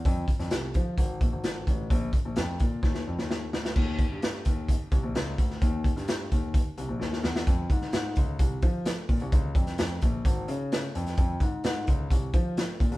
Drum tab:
CC |----------------|----------------|x---------------|----------------|
HH |x-xxx-x-x-x-x-x-|x-x-x-x---------|--x-x-x-x-x-x-x-|x-xxx-x-x-x-----|
SD |---oo-------o---|----o---oo-oo-oo|----o-------o--o|---oo-------oooo|
BD |o-o---o-o-o---o-|o-o---o-o-------|o-o---o-o-o---o-|o-o---o-o-------|

CC |----------------|----------------|----------------|
HH |x-x-x-x-x-x-x-ox|x-xxx-x-x-x-x-xx|x-x-x-x-x-x-x-xx|
SD |---oo-------o---|---oo-------o--o|----o-------o---|
BD |o-o---o-o-o---o-|o-o---o-o-------|o-o---o-o-o---o-|